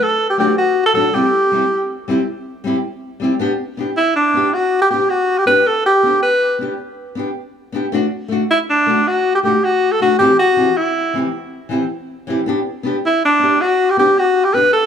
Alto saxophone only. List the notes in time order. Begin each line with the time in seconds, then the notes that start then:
0.03 A4
0.30 G4
0.40 G4
0.58 F#4
0.86 A4
0.95 A4
1.15 G4
3.97 E4
4.16 D4
4.53 F#4
4.82 G4
4.91 G4
5.10 F#4
5.38 G4
5.47 B4
5.67 A4
5.86 G4
6.23 B4
8.51 E4
8.70 D4
9.08 F#4
9.35 G4
9.45 G4
9.64 F#4
9.92 A4
10.02 F#4
10.19 G4
10.39 F#4
10.77 E4
13.06 E4
13.25 D4
13.61 F#4
13.90 G4
13.99 G4
14.19 F#4
14.45 G4
14.54 B4
14.73 A4